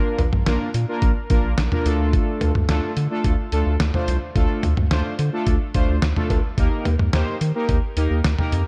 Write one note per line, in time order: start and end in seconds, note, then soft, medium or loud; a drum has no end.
0.00 0.22 A#3 medium
0.00 0.22 D4 medium
0.00 0.22 F4 medium
0.00 0.22 A#4 medium
0.19 0.30 A#1 medium
0.19 closed hi-hat medium
0.19 mid tom medium
0.19 cowbell medium
0.33 0.44 A#1 loud
0.33 mid tom loud
0.46 0.58 A#1 loud
0.46 0.70 A#3 medium
0.46 0.70 D4 medium
0.46 0.70 F4 medium
0.46 0.70 A#4 loud
0.46 snare loud
0.46 closed hi-hat medium
0.74 0.85 A#2 loud
0.74 closed hi-hat medium
0.88 1.11 A#3 medium
0.88 1.11 D4 medium
0.88 1.11 F4 medium
0.88 1.11 A#4 loud
1.02 1.13 A#1 loud
1.02 kick medium
1.02 closed hi-hat medium
1.30 1.41 A#1 loud
1.30 1.53 A#3 medium
1.30 1.53 D4 medium
1.30 1.53 F4 medium
1.30 1.53 A#4 loud
1.30 kick loud
1.30 closed hi-hat medium
1.44 1.55 A#1 medium
1.58 1.69 A#1 loud
1.58 snare loud
1.58 closed hi-hat medium
1.72 1.86 A#3 medium
1.72 1.84 D4 medium
1.72 1.84 F4 medium
1.72 1.86 A#4 medium
1.72 mid tom loud
1.85 2.19 D2 loud
1.85 2.52 A3 medium
1.85 2.52 D4 medium
1.85 2.52 F4 medium
1.85 2.52 A4 loud
1.85 closed hi-hat medium
2.13 kick loud
2.13 closed hi-hat medium
2.41 2.52 D2 loud
2.41 closed hi-hat medium
2.41 mid tom medium
2.41 cowbell medium
2.55 2.66 D2 loud
2.55 mid tom loud
2.69 2.80 D2 loud
2.69 2.92 A3 medium
2.69 2.92 D4 medium
2.69 2.92 F4 medium
2.69 2.92 A4 loud
2.69 snare loud
2.69 closed hi-hat medium
2.97 3.08 D3 loud
2.97 closed hi-hat medium
3.11 3.33 A3 medium
3.11 3.33 D4 medium
3.11 3.34 F4 medium
3.11 3.34 A4 loud
3.24 3.36 D2 loud
3.24 kick medium
3.24 closed hi-hat medium
3.52 3.63 D2 loud
3.52 3.75 A3 medium
3.52 3.75 D4 medium
3.52 3.75 F4 medium
3.52 3.75 A4 loud
3.52 closed hi-hat medium
3.66 3.77 D2 loud
3.80 3.91 D2 loud
3.80 snare loud
3.80 closed hi-hat medium
3.94 4.17 A3 medium
3.94 4.17 D4 medium
3.94 4.17 F4 medium
3.94 4.17 C5 loud
3.94 mid tom loud
4.08 4.19 C2 medium
4.08 closed hi-hat medium
4.36 4.47 D2 loud
4.36 4.66 A3 medium
4.36 4.66 D4 medium
4.36 4.66 F4 medium
4.36 4.66 A4 loud
4.36 kick loud
4.36 closed hi-hat medium
4.63 4.74 D2 loud
4.63 closed hi-hat medium
4.63 mid tom medium
4.77 4.88 D2 loud
4.77 mid tom loud
4.91 5.02 D2 loud
4.91 5.14 A3 medium
4.91 5.14 D4 medium
4.91 5.14 F4 medium
4.91 5.14 C5 loud
4.91 snare loud
4.91 closed hi-hat medium
5.19 5.30 D3 loud
5.19 closed hi-hat medium
5.33 5.56 A3 medium
5.33 5.56 D4 medium
5.33 5.56 F4 medium
5.33 5.56 A4 loud
5.47 5.58 D2 loud
5.47 kick medium
5.47 closed hi-hat medium
5.74 5.86 D2 loud
5.74 5.97 A3 medium
5.74 5.97 D4 medium
5.74 5.97 F4 medium
5.74 5.97 C5 loud
5.74 kick loud
5.74 closed hi-hat medium
5.88 5.99 D2 loud
6.02 6.13 D2 loud
6.02 snare loud
6.02 closed hi-hat medium
6.16 6.39 A3 medium
6.16 6.39 D4 medium
6.16 6.39 F4 medium
6.16 6.39 A4 loud
6.16 mid tom medium
6.30 6.41 D2 medium
6.30 kick medium
6.30 closed hi-hat medium
6.30 cowbell medium
6.58 6.69 D#2 loud
6.58 6.88 A#3 medium
6.58 6.88 D#4 medium
6.58 6.88 G4 medium
6.58 6.88 A#4 loud
6.58 kick loud
6.58 closed hi-hat medium
6.85 6.97 D#2 loud
6.85 closed hi-hat medium
6.85 mid tom medium
6.85 cowbell medium
6.99 7.11 D#2 medium
6.99 mid tom loud
7.13 7.24 D#2 loud
7.13 7.36 A#3 medium
7.13 7.36 D#4 medium
7.13 7.36 G4 medium
7.13 7.36 C5 loud
7.13 snare loud
7.13 closed hi-hat medium
7.41 7.52 D#3 loud
7.41 closed hi-hat medium
7.55 7.78 A#3 medium
7.55 7.78 D#4 medium
7.55 7.78 G4 medium
7.55 7.78 A#4 loud
7.69 7.80 D#2 loud
7.69 kick medium
7.69 closed hi-hat medium
7.97 8.08 D#2 loud
7.97 8.20 A#3 medium
7.97 8.20 D#4 medium
7.97 8.20 G4 medium
7.97 8.20 A#4 loud
7.97 closed hi-hat medium
8.10 8.22 D#2 loud
8.24 8.35 D2 medium
8.24 snare loud
8.24 closed hi-hat medium
8.38 8.61 A#3 medium
8.38 8.61 D#4 medium
8.38 8.61 G4 medium
8.38 8.61 A#4 loud
8.38 mid tom loud
8.52 8.63 F2 medium
8.52 closed hi-hat medium